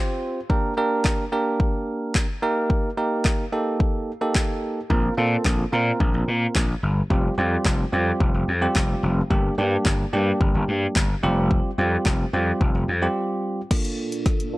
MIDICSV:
0, 0, Header, 1, 5, 480
1, 0, Start_track
1, 0, Key_signature, -2, "major"
1, 0, Tempo, 550459
1, 435, Time_signature, 4, 2, 24, 8
1, 12710, End_track
2, 0, Start_track
2, 0, Title_t, "Tine electric piano"
2, 0, Program_c, 0, 4
2, 0, Note_on_c, 0, 60, 85
2, 0, Note_on_c, 0, 65, 77
2, 0, Note_on_c, 0, 67, 79
2, 0, Note_on_c, 0, 72, 92
2, 342, Note_off_c, 0, 60, 0
2, 343, Note_off_c, 0, 65, 0
2, 343, Note_off_c, 0, 67, 0
2, 344, Note_off_c, 0, 72, 0
2, 432, Note_on_c, 0, 58, 81
2, 434, Note_on_c, 0, 62, 73
2, 435, Note_on_c, 0, 67, 77
2, 437, Note_on_c, 0, 70, 93
2, 637, Note_off_c, 0, 58, 0
2, 638, Note_off_c, 0, 62, 0
2, 638, Note_off_c, 0, 67, 0
2, 639, Note_off_c, 0, 70, 0
2, 673, Note_on_c, 0, 58, 84
2, 674, Note_on_c, 0, 62, 80
2, 675, Note_on_c, 0, 67, 76
2, 677, Note_on_c, 0, 70, 96
2, 1080, Note_off_c, 0, 58, 0
2, 1081, Note_off_c, 0, 62, 0
2, 1082, Note_off_c, 0, 67, 0
2, 1082, Note_off_c, 0, 70, 0
2, 1151, Note_on_c, 0, 58, 83
2, 1153, Note_on_c, 0, 62, 77
2, 1155, Note_on_c, 0, 67, 80
2, 1156, Note_on_c, 0, 70, 93
2, 1966, Note_off_c, 0, 58, 0
2, 1967, Note_off_c, 0, 62, 0
2, 1968, Note_off_c, 0, 67, 0
2, 1968, Note_off_c, 0, 70, 0
2, 2112, Note_on_c, 0, 58, 95
2, 2113, Note_on_c, 0, 63, 84
2, 2115, Note_on_c, 0, 67, 82
2, 2116, Note_on_c, 0, 70, 104
2, 2520, Note_off_c, 0, 58, 0
2, 2521, Note_off_c, 0, 63, 0
2, 2521, Note_off_c, 0, 67, 0
2, 2522, Note_off_c, 0, 70, 0
2, 2592, Note_on_c, 0, 58, 84
2, 2593, Note_on_c, 0, 63, 75
2, 2594, Note_on_c, 0, 67, 78
2, 2596, Note_on_c, 0, 70, 86
2, 3000, Note_off_c, 0, 58, 0
2, 3000, Note_off_c, 0, 63, 0
2, 3001, Note_off_c, 0, 67, 0
2, 3002, Note_off_c, 0, 70, 0
2, 3072, Note_on_c, 0, 58, 83
2, 3073, Note_on_c, 0, 63, 76
2, 3075, Note_on_c, 0, 67, 74
2, 3077, Note_on_c, 0, 69, 91
2, 3581, Note_off_c, 0, 58, 0
2, 3582, Note_off_c, 0, 63, 0
2, 3583, Note_off_c, 0, 67, 0
2, 3584, Note_off_c, 0, 69, 0
2, 3672, Note_on_c, 0, 58, 82
2, 3673, Note_on_c, 0, 63, 75
2, 3675, Note_on_c, 0, 67, 77
2, 3677, Note_on_c, 0, 69, 91
2, 4181, Note_off_c, 0, 58, 0
2, 4182, Note_off_c, 0, 63, 0
2, 4183, Note_off_c, 0, 67, 0
2, 4184, Note_off_c, 0, 69, 0
2, 4272, Note_on_c, 0, 58, 86
2, 4273, Note_on_c, 0, 60, 76
2, 4275, Note_on_c, 0, 65, 76
2, 4276, Note_on_c, 0, 70, 92
2, 4476, Note_off_c, 0, 58, 0
2, 4477, Note_off_c, 0, 60, 0
2, 4478, Note_off_c, 0, 65, 0
2, 4479, Note_off_c, 0, 70, 0
2, 4513, Note_on_c, 0, 58, 80
2, 4514, Note_on_c, 0, 60, 76
2, 4515, Note_on_c, 0, 65, 77
2, 4517, Note_on_c, 0, 69, 93
2, 4920, Note_off_c, 0, 58, 0
2, 4921, Note_off_c, 0, 60, 0
2, 4921, Note_off_c, 0, 65, 0
2, 4922, Note_off_c, 0, 69, 0
2, 4992, Note_on_c, 0, 58, 83
2, 4994, Note_on_c, 0, 60, 80
2, 4995, Note_on_c, 0, 65, 79
2, 4997, Note_on_c, 0, 70, 96
2, 5806, Note_off_c, 0, 58, 0
2, 5807, Note_off_c, 0, 60, 0
2, 5808, Note_off_c, 0, 65, 0
2, 5809, Note_off_c, 0, 70, 0
2, 6192, Note_on_c, 0, 55, 84
2, 6193, Note_on_c, 0, 60, 78
2, 6195, Note_on_c, 0, 65, 75
2, 6197, Note_on_c, 0, 67, 93
2, 6397, Note_off_c, 0, 55, 0
2, 6397, Note_off_c, 0, 60, 0
2, 6398, Note_off_c, 0, 65, 0
2, 6399, Note_off_c, 0, 67, 0
2, 6432, Note_on_c, 0, 55, 82
2, 6433, Note_on_c, 0, 60, 72
2, 6434, Note_on_c, 0, 65, 79
2, 6436, Note_on_c, 0, 67, 92
2, 6840, Note_off_c, 0, 55, 0
2, 6840, Note_off_c, 0, 60, 0
2, 6841, Note_off_c, 0, 65, 0
2, 6842, Note_off_c, 0, 67, 0
2, 6912, Note_on_c, 0, 55, 84
2, 6913, Note_on_c, 0, 60, 80
2, 6914, Note_on_c, 0, 65, 77
2, 6916, Note_on_c, 0, 67, 95
2, 7421, Note_off_c, 0, 55, 0
2, 7422, Note_off_c, 0, 60, 0
2, 7423, Note_off_c, 0, 65, 0
2, 7423, Note_off_c, 0, 67, 0
2, 7513, Note_on_c, 0, 55, 84
2, 7514, Note_on_c, 0, 60, 78
2, 7515, Note_on_c, 0, 65, 78
2, 7517, Note_on_c, 0, 67, 97
2, 8022, Note_off_c, 0, 55, 0
2, 8022, Note_off_c, 0, 60, 0
2, 8023, Note_off_c, 0, 65, 0
2, 8024, Note_off_c, 0, 67, 0
2, 8112, Note_on_c, 0, 55, 86
2, 8114, Note_on_c, 0, 58, 80
2, 8115, Note_on_c, 0, 62, 78
2, 8117, Note_on_c, 0, 67, 93
2, 8317, Note_off_c, 0, 55, 0
2, 8317, Note_off_c, 0, 58, 0
2, 8318, Note_off_c, 0, 62, 0
2, 8319, Note_off_c, 0, 67, 0
2, 8353, Note_on_c, 0, 55, 85
2, 8354, Note_on_c, 0, 58, 72
2, 8355, Note_on_c, 0, 62, 77
2, 8357, Note_on_c, 0, 67, 89
2, 8760, Note_off_c, 0, 55, 0
2, 8761, Note_off_c, 0, 58, 0
2, 8761, Note_off_c, 0, 62, 0
2, 8762, Note_off_c, 0, 67, 0
2, 8832, Note_on_c, 0, 55, 86
2, 8834, Note_on_c, 0, 58, 77
2, 8835, Note_on_c, 0, 62, 81
2, 8837, Note_on_c, 0, 67, 92
2, 9646, Note_off_c, 0, 55, 0
2, 9647, Note_off_c, 0, 58, 0
2, 9648, Note_off_c, 0, 62, 0
2, 9649, Note_off_c, 0, 67, 0
2, 9792, Note_on_c, 0, 55, 95
2, 9794, Note_on_c, 0, 60, 83
2, 9795, Note_on_c, 0, 65, 82
2, 9797, Note_on_c, 0, 67, 106
2, 10200, Note_off_c, 0, 55, 0
2, 10201, Note_off_c, 0, 60, 0
2, 10201, Note_off_c, 0, 65, 0
2, 10202, Note_off_c, 0, 67, 0
2, 10273, Note_on_c, 0, 55, 81
2, 10274, Note_on_c, 0, 60, 75
2, 10276, Note_on_c, 0, 65, 74
2, 10277, Note_on_c, 0, 67, 91
2, 10680, Note_off_c, 0, 55, 0
2, 10681, Note_off_c, 0, 60, 0
2, 10682, Note_off_c, 0, 65, 0
2, 10683, Note_off_c, 0, 67, 0
2, 10753, Note_on_c, 0, 55, 83
2, 10754, Note_on_c, 0, 60, 78
2, 10756, Note_on_c, 0, 65, 74
2, 10757, Note_on_c, 0, 67, 93
2, 11262, Note_off_c, 0, 55, 0
2, 11262, Note_off_c, 0, 60, 0
2, 11263, Note_off_c, 0, 65, 0
2, 11264, Note_off_c, 0, 67, 0
2, 11353, Note_on_c, 0, 55, 82
2, 11355, Note_on_c, 0, 60, 75
2, 11356, Note_on_c, 0, 65, 75
2, 11357, Note_on_c, 0, 67, 95
2, 11862, Note_off_c, 0, 55, 0
2, 11863, Note_off_c, 0, 60, 0
2, 11863, Note_off_c, 0, 65, 0
2, 11864, Note_off_c, 0, 67, 0
2, 11953, Note_on_c, 0, 58, 81
2, 11954, Note_on_c, 0, 62, 70
2, 11955, Note_on_c, 0, 65, 74
2, 11957, Note_on_c, 0, 69, 86
2, 12563, Note_off_c, 0, 58, 0
2, 12564, Note_off_c, 0, 62, 0
2, 12565, Note_off_c, 0, 65, 0
2, 12566, Note_off_c, 0, 69, 0
2, 12672, Note_on_c, 0, 58, 84
2, 12673, Note_on_c, 0, 62, 77
2, 12675, Note_on_c, 0, 65, 76
2, 12676, Note_on_c, 0, 69, 90
2, 12710, Note_off_c, 0, 58, 0
2, 12710, Note_off_c, 0, 62, 0
2, 12710, Note_off_c, 0, 65, 0
2, 12710, Note_off_c, 0, 69, 0
2, 12710, End_track
3, 0, Start_track
3, 0, Title_t, "Ambient pad"
3, 0, Program_c, 1, 92
3, 11955, Note_on_c, 1, 58, 68
3, 11955, Note_on_c, 1, 62, 71
3, 11956, Note_on_c, 1, 46, 76
3, 11956, Note_on_c, 1, 69, 83
3, 12710, Note_off_c, 1, 46, 0
3, 12710, Note_off_c, 1, 58, 0
3, 12710, Note_off_c, 1, 62, 0
3, 12710, Note_off_c, 1, 69, 0
3, 12710, End_track
4, 0, Start_track
4, 0, Title_t, "Slap bass"
4, 0, Program_c, 2, 36
4, 4275, Note_on_c, 2, 34, 99
4, 4431, Note_off_c, 2, 34, 0
4, 4514, Note_on_c, 2, 46, 94
4, 4670, Note_off_c, 2, 46, 0
4, 4754, Note_on_c, 2, 34, 88
4, 4910, Note_off_c, 2, 34, 0
4, 4995, Note_on_c, 2, 46, 98
4, 5151, Note_off_c, 2, 46, 0
4, 5235, Note_on_c, 2, 34, 97
4, 5313, Note_off_c, 2, 34, 0
4, 5354, Note_on_c, 2, 34, 96
4, 5432, Note_off_c, 2, 34, 0
4, 5474, Note_on_c, 2, 46, 104
4, 5630, Note_off_c, 2, 46, 0
4, 5716, Note_on_c, 2, 34, 85
4, 5871, Note_off_c, 2, 34, 0
4, 5954, Note_on_c, 2, 31, 86
4, 6110, Note_off_c, 2, 31, 0
4, 6194, Note_on_c, 2, 29, 102
4, 6350, Note_off_c, 2, 29, 0
4, 6434, Note_on_c, 2, 41, 96
4, 6590, Note_off_c, 2, 41, 0
4, 6673, Note_on_c, 2, 29, 93
4, 6830, Note_off_c, 2, 29, 0
4, 6914, Note_on_c, 2, 41, 96
4, 7070, Note_off_c, 2, 41, 0
4, 7154, Note_on_c, 2, 29, 91
4, 7232, Note_off_c, 2, 29, 0
4, 7274, Note_on_c, 2, 29, 89
4, 7352, Note_off_c, 2, 29, 0
4, 7395, Note_on_c, 2, 41, 96
4, 7551, Note_off_c, 2, 41, 0
4, 7635, Note_on_c, 2, 29, 89
4, 7791, Note_off_c, 2, 29, 0
4, 7874, Note_on_c, 2, 29, 91
4, 8030, Note_off_c, 2, 29, 0
4, 8114, Note_on_c, 2, 31, 106
4, 8270, Note_off_c, 2, 31, 0
4, 8355, Note_on_c, 2, 43, 93
4, 8511, Note_off_c, 2, 43, 0
4, 8594, Note_on_c, 2, 31, 90
4, 8750, Note_off_c, 2, 31, 0
4, 8835, Note_on_c, 2, 43, 95
4, 8991, Note_off_c, 2, 43, 0
4, 9075, Note_on_c, 2, 31, 103
4, 9153, Note_off_c, 2, 31, 0
4, 9194, Note_on_c, 2, 31, 92
4, 9272, Note_off_c, 2, 31, 0
4, 9314, Note_on_c, 2, 43, 99
4, 9470, Note_off_c, 2, 43, 0
4, 9556, Note_on_c, 2, 31, 95
4, 9712, Note_off_c, 2, 31, 0
4, 9794, Note_on_c, 2, 29, 98
4, 10106, Note_off_c, 2, 29, 0
4, 10274, Note_on_c, 2, 41, 96
4, 10430, Note_off_c, 2, 41, 0
4, 10514, Note_on_c, 2, 29, 91
4, 10670, Note_off_c, 2, 29, 0
4, 10754, Note_on_c, 2, 41, 93
4, 10910, Note_off_c, 2, 41, 0
4, 10995, Note_on_c, 2, 29, 92
4, 11073, Note_off_c, 2, 29, 0
4, 11114, Note_on_c, 2, 29, 95
4, 11192, Note_off_c, 2, 29, 0
4, 11234, Note_on_c, 2, 41, 100
4, 11390, Note_off_c, 2, 41, 0
4, 12710, End_track
5, 0, Start_track
5, 0, Title_t, "Drums"
5, 434, Note_on_c, 9, 36, 102
5, 521, Note_off_c, 9, 36, 0
5, 913, Note_on_c, 9, 36, 103
5, 914, Note_on_c, 9, 39, 94
5, 920, Note_on_c, 9, 38, 78
5, 1000, Note_off_c, 9, 36, 0
5, 1001, Note_off_c, 9, 39, 0
5, 1007, Note_off_c, 9, 38, 0
5, 1394, Note_on_c, 9, 36, 106
5, 1481, Note_off_c, 9, 36, 0
5, 1875, Note_on_c, 9, 36, 115
5, 1875, Note_on_c, 9, 39, 102
5, 1881, Note_on_c, 9, 38, 88
5, 1962, Note_off_c, 9, 36, 0
5, 1962, Note_off_c, 9, 39, 0
5, 1968, Note_off_c, 9, 38, 0
5, 2354, Note_on_c, 9, 36, 99
5, 2441, Note_off_c, 9, 36, 0
5, 2833, Note_on_c, 9, 36, 109
5, 2834, Note_on_c, 9, 39, 93
5, 2840, Note_on_c, 9, 38, 76
5, 2920, Note_off_c, 9, 36, 0
5, 2921, Note_off_c, 9, 39, 0
5, 2927, Note_off_c, 9, 38, 0
5, 3314, Note_on_c, 9, 36, 114
5, 3402, Note_off_c, 9, 36, 0
5, 3796, Note_on_c, 9, 36, 119
5, 3796, Note_on_c, 9, 39, 107
5, 3802, Note_on_c, 9, 38, 86
5, 3883, Note_off_c, 9, 36, 0
5, 3883, Note_off_c, 9, 39, 0
5, 3889, Note_off_c, 9, 38, 0
5, 4275, Note_on_c, 9, 36, 106
5, 4362, Note_off_c, 9, 36, 0
5, 4753, Note_on_c, 9, 36, 107
5, 4755, Note_on_c, 9, 39, 96
5, 4761, Note_on_c, 9, 38, 76
5, 4841, Note_off_c, 9, 36, 0
5, 4842, Note_off_c, 9, 39, 0
5, 4848, Note_off_c, 9, 38, 0
5, 5235, Note_on_c, 9, 36, 111
5, 5322, Note_off_c, 9, 36, 0
5, 5716, Note_on_c, 9, 36, 114
5, 5716, Note_on_c, 9, 39, 105
5, 5722, Note_on_c, 9, 38, 88
5, 5803, Note_off_c, 9, 36, 0
5, 5803, Note_off_c, 9, 39, 0
5, 5809, Note_off_c, 9, 38, 0
5, 6194, Note_on_c, 9, 36, 99
5, 6282, Note_off_c, 9, 36, 0
5, 6673, Note_on_c, 9, 36, 109
5, 6674, Note_on_c, 9, 39, 92
5, 6680, Note_on_c, 9, 38, 73
5, 6760, Note_off_c, 9, 36, 0
5, 6761, Note_off_c, 9, 39, 0
5, 6767, Note_off_c, 9, 38, 0
5, 7154, Note_on_c, 9, 36, 110
5, 7241, Note_off_c, 9, 36, 0
5, 7636, Note_on_c, 9, 36, 114
5, 7636, Note_on_c, 9, 39, 108
5, 7642, Note_on_c, 9, 38, 85
5, 7723, Note_off_c, 9, 36, 0
5, 7723, Note_off_c, 9, 39, 0
5, 7729, Note_off_c, 9, 38, 0
5, 8114, Note_on_c, 9, 36, 99
5, 8202, Note_off_c, 9, 36, 0
5, 8593, Note_on_c, 9, 36, 107
5, 8595, Note_on_c, 9, 39, 93
5, 8601, Note_on_c, 9, 38, 75
5, 8681, Note_off_c, 9, 36, 0
5, 8682, Note_off_c, 9, 39, 0
5, 8688, Note_off_c, 9, 38, 0
5, 9075, Note_on_c, 9, 36, 115
5, 9162, Note_off_c, 9, 36, 0
5, 9556, Note_on_c, 9, 36, 117
5, 9557, Note_on_c, 9, 39, 112
5, 9562, Note_on_c, 9, 38, 85
5, 9643, Note_off_c, 9, 36, 0
5, 9644, Note_off_c, 9, 39, 0
5, 9650, Note_off_c, 9, 38, 0
5, 10034, Note_on_c, 9, 36, 102
5, 10122, Note_off_c, 9, 36, 0
5, 10513, Note_on_c, 9, 36, 113
5, 10514, Note_on_c, 9, 39, 91
5, 10520, Note_on_c, 9, 38, 79
5, 10601, Note_off_c, 9, 36, 0
5, 10602, Note_off_c, 9, 39, 0
5, 10608, Note_off_c, 9, 38, 0
5, 10994, Note_on_c, 9, 36, 113
5, 11082, Note_off_c, 9, 36, 0
5, 11954, Note_on_c, 9, 36, 109
5, 11954, Note_on_c, 9, 38, 51
5, 11954, Note_on_c, 9, 42, 75
5, 11954, Note_on_c, 9, 49, 100
5, 12041, Note_off_c, 9, 36, 0
5, 12041, Note_off_c, 9, 38, 0
5, 12041, Note_off_c, 9, 42, 0
5, 12041, Note_off_c, 9, 49, 0
5, 12075, Note_on_c, 9, 42, 52
5, 12162, Note_off_c, 9, 42, 0
5, 12315, Note_on_c, 9, 42, 52
5, 12402, Note_off_c, 9, 42, 0
5, 12433, Note_on_c, 9, 36, 110
5, 12433, Note_on_c, 9, 42, 65
5, 12434, Note_on_c, 9, 38, 54
5, 12520, Note_off_c, 9, 36, 0
5, 12520, Note_off_c, 9, 42, 0
5, 12521, Note_off_c, 9, 38, 0
5, 12557, Note_on_c, 9, 42, 52
5, 12644, Note_off_c, 9, 42, 0
5, 12710, End_track
0, 0, End_of_file